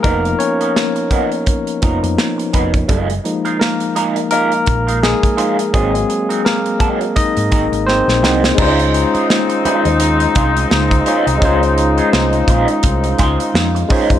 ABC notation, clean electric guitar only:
X:1
M:4/4
L:1/16
Q:"Swing 16ths" 1/4=84
K:Db
V:1 name="Clean electric guitar"
[F,_CEB] z2 [F,CEB] z2 [F,CEB] z3 [F,CEB] z3 [F,CE_c] z | [A,EFB] z2 [A,EFB] z2 [A,EFB] z [A,EFB] z2 [A,EFB] z2 [A,EFc] z | [G,CEB] z2 [G,CEB] z2 [G,CEB] z3 [G,CEB] z3 [G,CEc] z | [A,EFc] z2 [A,EFc] z2 [A,EFc] z3 [A,EFc] z3 [A,EFd] z |
[A,EFc] z2 [A,EFc] z2 [A,EFc] z3 [A,EFc] z3 [A,EFd] z |]